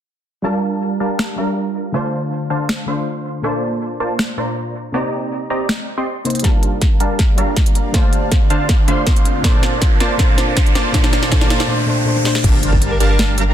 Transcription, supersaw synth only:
0.44 0.98 G3 medium
0.44 0.98 D4 medium
0.44 0.98 A#4 medium
0.44 0.98 F5 medium
0.44 0.98 A5 loud
1.00 1.36 G3 medium
1.00 1.36 D4 medium
1.00 1.36 A#4 medium
1.00 1.36 F5 medium
1.00 1.36 A5 loud
1.38 1.92 G3 medium
1.38 1.92 D4 medium
1.38 1.92 A#4 medium
1.38 1.92 F5 medium
1.38 1.92 A#5 medium
1.94 2.48 D3 medium
1.94 2.48 D4 medium
1.94 2.48 C5 medium
1.94 2.48 F5 medium
1.94 2.48 A5 loud
2.50 2.86 D3 medium
2.50 2.86 D4 medium
2.50 2.86 C5 medium
2.50 2.86 F5 medium
2.50 2.86 A5 loud
2.88 3.42 D3 medium
2.88 3.42 D4 medium
2.88 3.42 C5 medium
2.88 3.42 F5 medium
2.88 3.42 C6 medium
3.44 3.98 A#3 loud
3.44 3.98 F4 medium
3.44 3.98 C5 medium
3.44 3.98 D5 medium
3.44 3.98 A5 loud
4.00 4.36 A#3 loud
4.00 4.36 F4 medium
4.00 4.36 C5 medium
4.00 4.36 D5 medium
4.00 4.36 A5 loud
4.38 4.74 A#3 medium
4.38 4.74 F4 medium
4.38 4.74 C5 medium
4.38 4.74 D5 medium
4.38 4.74 A#5 medium
4.94 5.48 C4 loud
4.94 5.48 G4 medium
4.94 5.48 D5 medium
4.94 5.48 D#5 medium
4.94 5.48 A#5 loud
5.50 5.86 C4 medium
5.50 5.86 G4 medium
5.50 5.86 D5 medium
5.50 5.86 D#5 medium
5.50 5.86 A#5 loud
5.97 6.07 C4 medium
5.97 6.07 G4 medium
5.97 6.07 D5 medium
5.97 6.07 D#5 medium
5.97 6.07 C6 loud
6.44 6.98 G3 loud
6.44 6.98 D4 medium
6.44 6.98 A#4 medium
6.44 6.98 F5 medium
6.44 6.98 A5 loud
7.00 7.36 G3 medium
7.00 7.36 D4 medium
7.00 7.36 A#4 medium
7.00 7.36 F5 medium
7.00 7.36 A5 loud
7.38 7.92 G3 medium
7.38 7.92 D4 medium
7.38 7.92 A#4 medium
7.38 7.92 F5 medium
7.38 7.92 A#5 medium
7.94 8.48 D3 loud
7.94 8.48 D4 medium
7.94 8.48 C5 medium
7.94 8.48 F5 medium
7.94 8.48 A5 loud
8.50 8.86 D3 medium
8.50 8.86 D4 medium
8.50 8.86 C5 medium
8.50 8.86 F5 medium
8.50 8.86 A5 loud
8.88 9.42 D3 medium
8.88 9.42 D4 medium
8.88 9.42 C5 medium
8.88 9.42 F5 medium
8.88 9.42 C6 medium
9.44 9.98 A#3 medium
9.44 9.98 F4 medium
9.44 9.98 C5 medium
9.44 9.98 D5 medium
9.44 9.98 A5 loud
10.00 10.18 A#3 medium
10.00 10.18 F4 medium
10.00 10.18 C5 medium
10.00 10.18 D5 medium
10.00 10.18 A5 loud
10.19 10.73 A#3 medium
10.19 10.73 F4 medium
10.19 10.73 C5 medium
10.19 10.73 D5 medium
10.19 10.73 A5 loud
10.75 10.93 A#3 medium
10.75 10.93 F4 medium
10.75 10.93 C5 medium
10.75 10.93 D5 medium
10.75 10.93 A5 loud
10.94 11.30 A#3 loud
10.94 11.30 F4 medium
10.94 11.30 C5 medium
10.94 11.30 D5 medium
10.94 11.30 A5 loud
11.32 11.68 A#3 loud
11.32 11.68 F4 medium
11.32 11.68 C5 medium
11.32 11.68 D5 medium
11.32 11.68 A5 loud
12.44 12.98 G3 loud
12.44 12.98 D4 medium
12.44 12.98 A#4 medium
12.44 12.98 F5 medium
12.44 12.98 A5 loud
13.00 13.36 G3 loud
13.00 13.36 D4 medium
13.00 13.36 A#4 medium
13.00 13.36 F5 medium
13.00 13.36 A5 loud
13.38 13.54 G3 medium
13.38 13.54 D4 medium
13.38 13.54 A#4 medium
13.38 13.54 F5 medium
13.38 13.54 A#5 medium

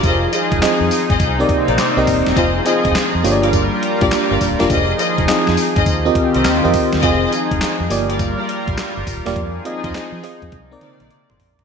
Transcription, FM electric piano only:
0.00 0.21 F5 medium
0.62 1.20 C4 medium
0.62 1.20 D#4 medium
0.62 1.20 F4 medium
0.62 1.20 G#4 medium
0.62 1.21 D#5 loud
1.39 1.92 C4 medium
1.39 1.92 D#4 medium
1.39 1.92 G4 medium
1.39 1.93 A#4 medium
1.39 1.93 D5 loud
1.97 2.36 C4 medium
1.97 2.37 D#4 medium
1.97 2.37 G4 medium
1.97 2.37 A#4 medium
1.97 2.37 D#5 loud
2.65 3.21 C4 medium
2.65 3.21 D#4 medium
2.65 3.21 F4 medium
2.65 3.21 G#4 medium
2.65 3.22 D#5 loud
3.23 3.94 A#3 medium
3.23 3.95 D4 medium
3.23 3.95 F4 medium
3.23 3.95 G4 medium
3.23 3.33 C#5 medium
3.32 3.98 D5 loud
4.01 4.54 A#3 medium
4.01 4.54 D4 medium
4.01 4.54 F4 medium
4.01 4.55 G4 medium
4.01 4.55 D5 loud
4.59 4.69 A#3 loud
4.59 4.70 D4 medium
4.59 4.70 F4 medium
4.59 4.70 G4 medium
4.59 4.70 D5 loud
5.28 5.86 C4 medium
5.28 5.86 D#4 medium
5.28 5.87 F4 medium
5.28 5.87 G#4 medium
5.28 5.87 D#5 loud
6.05 6.58 C4 loud
6.05 6.58 F4 medium
6.05 6.59 G4 medium
6.05 6.59 A#4 medium
6.05 6.59 D#5 medium
6.64 7.01 C4 medium
6.64 7.02 F4 medium
6.64 7.03 G4 medium
6.64 7.03 A#4 medium
6.64 7.03 D#5 loud
7.03 7.86 C4 medium
7.03 7.86 F4 medium
7.03 7.86 G#4 medium
7.03 7.86 D#5 loud
7.90 9.01 A#3 loud
7.90 9.01 F4 medium
7.90 9.01 G4 medium
7.90 9.02 D5 loud
9.26 9.36 A#3 loud
9.26 9.36 F4 medium
9.26 9.36 G4 medium
9.26 9.36 D5 loud
9.65 9.93 C4 medium
9.65 9.93 F4 medium
9.65 9.93 G#4 medium
9.65 9.93 D#5 loud
9.95 10.22 C4 medium
9.95 10.22 F4 medium
9.95 10.22 G#4 medium
9.95 10.23 D#5 medium
10.23 10.52 C4 loud
10.23 10.52 F4 medium
10.23 10.52 G#4 medium
10.23 10.53 D#5 loud
10.71 11.24 C4 loud
10.71 11.24 D#4 medium
10.71 11.25 A#4 medium
10.71 11.25 D5 loud
11.11 11.29 D6 medium
11.30 11.58 C6 medium
11.60 11.64 A#5 medium

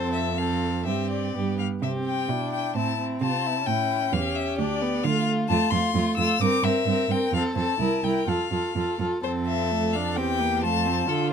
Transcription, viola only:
0.00 0.34 C4 soft
0.37 0.85 C4 soft
0.87 1.37 C4 soft
1.35 1.62 B3 soft
1.85 2.31 C4 soft
2.29 2.77 D4 soft
2.76 2.99 C4 soft
3.00 3.67 C4 soft
3.68 4.61 C#4 soft
4.60 4.84 D4 soft
4.82 5.07 B3 medium
5.05 5.50 A3 medium
5.50 5.72 A3 medium
5.74 5.96 A3 soft
5.97 6.18 A3 medium
6.20 6.42 A3 soft
6.42 6.64 C4 medium
6.66 6.87 C4 soft
6.88 7.10 C4 soft
7.12 7.33 C4 soft
7.34 7.57 C4 soft
7.57 7.79 C4 soft
7.80 8.03 E4 soft
8.04 8.27 E4 soft
8.28 8.51 F4 soft
8.52 8.76 F4 soft
8.77 9.00 F4 soft
9.01 9.23 F4 soft
9.25 9.73 C4 soft
9.72 9.97 A3 soft
9.95 10.20 D4 soft
10.18 10.42 C4 soft
10.40 10.65 A#3 soft
10.63 10.88 A3 soft
10.87 11.10 C4 soft
11.08 11.33 F4 medium

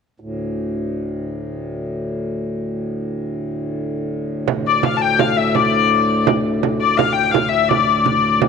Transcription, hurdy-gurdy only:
4.67 4.85 D5 medium
4.85 4.97 F5 medium
4.97 5.02 A5 medium
5.02 5.20 G5 medium
5.19 5.37 F5 medium
5.37 5.55 E5 medium
5.55 6.27 D5 medium
6.80 6.97 D5 medium
6.97 7.16 F5 medium
7.13 7.32 G5 medium
7.31 7.50 F5 medium
7.49 7.68 E5 medium
7.68 8.36 D5 medium

